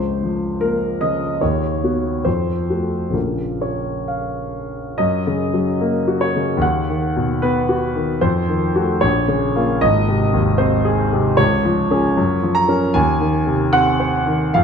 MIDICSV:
0, 0, Header, 1, 2, 480
1, 0, Start_track
1, 0, Key_signature, -5, "minor"
1, 0, Tempo, 792602
1, 855, Time_signature, 2, 2, 24, 8
1, 855, Tempo, 845070
1, 1335, Tempo, 910470
1, 2775, Tempo, 805369
1, 5655, Tempo, 781250
1, 8055, Tempo, 811908
1, 8594, End_track
2, 0, Start_track
2, 0, Title_t, "Grand piano"
2, 0, Program_c, 0, 0
2, 0, Control_c, 0, 64, 127
2, 0, Note_on_c, 0, 37, 43
2, 0, Note_on_c, 0, 72, 60
2, 138, Note_on_c, 0, 53, 41
2, 368, Note_on_c, 0, 70, 65
2, 370, Note_off_c, 0, 72, 0
2, 375, Note_on_c, 0, 58, 37
2, 516, Note_off_c, 0, 53, 0
2, 588, Note_off_c, 0, 58, 0
2, 609, Note_off_c, 0, 70, 0
2, 611, Note_on_c, 0, 75, 71
2, 618, Note_on_c, 0, 49, 38
2, 834, Note_off_c, 0, 37, 0
2, 855, Note_off_c, 0, 75, 0
2, 855, Note_on_c, 0, 73, 58
2, 859, Note_off_c, 0, 49, 0
2, 860, Note_on_c, 0, 39, 46
2, 865, Control_c, 0, 64, 0
2, 958, Control_c, 0, 64, 127
2, 1095, Note_on_c, 0, 59, 34
2, 1100, Note_on_c, 0, 66, 33
2, 1314, Note_off_c, 0, 59, 0
2, 1316, Note_off_c, 0, 66, 0
2, 1323, Note_off_c, 0, 39, 0
2, 1328, Note_on_c, 0, 72, 62
2, 1335, Note_off_c, 0, 73, 0
2, 1336, Note_on_c, 0, 41, 45
2, 1345, Control_c, 0, 64, 0
2, 1451, Control_c, 0, 64, 127
2, 1567, Note_on_c, 0, 57, 32
2, 1569, Note_on_c, 0, 66, 31
2, 1778, Note_on_c, 0, 34, 29
2, 1785, Note_on_c, 0, 49, 23
2, 1786, Note_off_c, 0, 57, 0
2, 1787, Note_off_c, 0, 66, 0
2, 1791, Note_on_c, 0, 58, 28
2, 1792, Note_off_c, 0, 41, 0
2, 1797, Note_on_c, 0, 65, 27
2, 1800, Note_on_c, 0, 70, 42
2, 1803, Note_off_c, 0, 72, 0
2, 1816, Control_c, 0, 64, 0
2, 1914, Control_c, 0, 64, 127
2, 2051, Note_on_c, 0, 73, 44
2, 2295, Note_on_c, 0, 77, 47
2, 2297, Note_off_c, 0, 73, 0
2, 2540, Note_off_c, 0, 70, 0
2, 2740, Note_off_c, 0, 34, 0
2, 2744, Note_off_c, 0, 49, 0
2, 2747, Note_off_c, 0, 58, 0
2, 2750, Note_off_c, 0, 65, 0
2, 2769, Note_on_c, 0, 75, 60
2, 2774, Note_off_c, 0, 77, 0
2, 2774, Note_on_c, 0, 42, 42
2, 2786, Control_c, 0, 64, 0
2, 2901, Control_c, 0, 64, 127
2, 2942, Note_on_c, 0, 49, 34
2, 3102, Note_on_c, 0, 54, 32
2, 3199, Note_off_c, 0, 49, 0
2, 3264, Note_on_c, 0, 58, 36
2, 3358, Note_off_c, 0, 54, 0
2, 3423, Note_on_c, 0, 66, 34
2, 3500, Note_off_c, 0, 75, 0
2, 3502, Note_on_c, 0, 73, 58
2, 3521, Note_off_c, 0, 58, 0
2, 3593, Note_on_c, 0, 49, 32
2, 3683, Note_off_c, 0, 66, 0
2, 3717, Note_on_c, 0, 39, 46
2, 3723, Note_off_c, 0, 42, 0
2, 3745, Note_on_c, 0, 78, 52
2, 3747, Note_off_c, 0, 73, 0
2, 3752, Note_off_c, 0, 49, 0
2, 3757, Control_c, 0, 64, 0
2, 3858, Control_c, 0, 64, 127
2, 3911, Note_on_c, 0, 51, 35
2, 3988, Note_off_c, 0, 78, 0
2, 4071, Note_on_c, 0, 47, 37
2, 4165, Note_off_c, 0, 51, 0
2, 4225, Note_on_c, 0, 71, 62
2, 4229, Note_on_c, 0, 59, 36
2, 4324, Note_off_c, 0, 47, 0
2, 4385, Note_on_c, 0, 66, 36
2, 4481, Note_off_c, 0, 59, 0
2, 4543, Note_on_c, 0, 51, 34
2, 4637, Note_off_c, 0, 66, 0
2, 4662, Note_off_c, 0, 39, 0
2, 4697, Note_on_c, 0, 72, 63
2, 4700, Note_off_c, 0, 71, 0
2, 4701, Note_off_c, 0, 51, 0
2, 4701, Note_on_c, 0, 41, 48
2, 4711, Control_c, 0, 64, 0
2, 4808, Control_c, 0, 64, 127
2, 4860, Note_on_c, 0, 51, 34
2, 5018, Note_on_c, 0, 57, 36
2, 5021, Note_on_c, 0, 66, 38
2, 5115, Note_off_c, 0, 51, 0
2, 5163, Note_off_c, 0, 57, 0
2, 5164, Note_off_c, 0, 41, 0
2, 5164, Note_off_c, 0, 66, 0
2, 5171, Note_on_c, 0, 73, 69
2, 5177, Note_off_c, 0, 72, 0
2, 5177, Note_on_c, 0, 34, 49
2, 5188, Control_c, 0, 64, 0
2, 5299, Control_c, 0, 64, 127
2, 5334, Note_on_c, 0, 49, 37
2, 5499, Note_on_c, 0, 58, 38
2, 5499, Note_on_c, 0, 65, 44
2, 5591, Note_off_c, 0, 49, 0
2, 5641, Note_off_c, 0, 58, 0
2, 5641, Note_off_c, 0, 65, 0
2, 5642, Note_off_c, 0, 34, 0
2, 5650, Note_on_c, 0, 75, 76
2, 5653, Note_off_c, 0, 73, 0
2, 5655, Note_on_c, 0, 32, 50
2, 5668, Control_c, 0, 64, 0
2, 5782, Control_c, 0, 64, 127
2, 5816, Note_on_c, 0, 48, 35
2, 5969, Note_on_c, 0, 39, 40
2, 6068, Note_off_c, 0, 48, 0
2, 6121, Note_on_c, 0, 72, 59
2, 6127, Note_on_c, 0, 60, 39
2, 6128, Note_off_c, 0, 75, 0
2, 6225, Note_off_c, 0, 39, 0
2, 6287, Note_on_c, 0, 68, 48
2, 6367, Note_off_c, 0, 72, 0
2, 6386, Note_off_c, 0, 60, 0
2, 6456, Note_on_c, 0, 48, 46
2, 6550, Note_off_c, 0, 68, 0
2, 6592, Note_off_c, 0, 32, 0
2, 6607, Note_on_c, 0, 73, 80
2, 6613, Note_on_c, 0, 37, 52
2, 6619, Note_off_c, 0, 48, 0
2, 6627, Control_c, 0, 64, 0
2, 6734, Control_c, 0, 64, 127
2, 6779, Note_on_c, 0, 53, 43
2, 6939, Note_on_c, 0, 61, 43
2, 6939, Note_on_c, 0, 68, 43
2, 7038, Note_off_c, 0, 53, 0
2, 7085, Note_off_c, 0, 61, 0
2, 7085, Note_off_c, 0, 68, 0
2, 7086, Note_off_c, 0, 37, 0
2, 7099, Note_on_c, 0, 42, 51
2, 7112, Control_c, 0, 64, 0
2, 7211, Control_c, 0, 64, 127
2, 7259, Note_on_c, 0, 53, 44
2, 7330, Note_on_c, 0, 82, 84
2, 7336, Note_off_c, 0, 73, 0
2, 7415, Note_on_c, 0, 61, 45
2, 7418, Note_on_c, 0, 70, 45
2, 7514, Note_off_c, 0, 53, 0
2, 7560, Note_off_c, 0, 61, 0
2, 7561, Note_off_c, 0, 70, 0
2, 7563, Note_off_c, 0, 42, 0
2, 7571, Note_on_c, 0, 80, 76
2, 7573, Note_off_c, 0, 82, 0
2, 7574, Note_on_c, 0, 39, 60
2, 7587, Control_c, 0, 64, 0
2, 7670, Control_c, 0, 64, 127
2, 7735, Note_on_c, 0, 51, 42
2, 7895, Note_on_c, 0, 48, 42
2, 7992, Note_off_c, 0, 51, 0
2, 8054, Note_off_c, 0, 80, 0
2, 8055, Note_on_c, 0, 78, 81
2, 8060, Note_on_c, 0, 60, 44
2, 8151, Note_off_c, 0, 48, 0
2, 8215, Note_on_c, 0, 72, 46
2, 8311, Note_off_c, 0, 60, 0
2, 8376, Note_on_c, 0, 51, 44
2, 8471, Note_off_c, 0, 72, 0
2, 8510, Note_off_c, 0, 39, 0
2, 8535, Note_off_c, 0, 78, 0
2, 8535, Note_on_c, 0, 77, 75
2, 8537, Note_off_c, 0, 51, 0
2, 8541, Note_on_c, 0, 41, 53
2, 8547, Control_c, 0, 64, 0
2, 8594, Note_off_c, 0, 41, 0
2, 8594, Note_off_c, 0, 77, 0
2, 8594, End_track
0, 0, End_of_file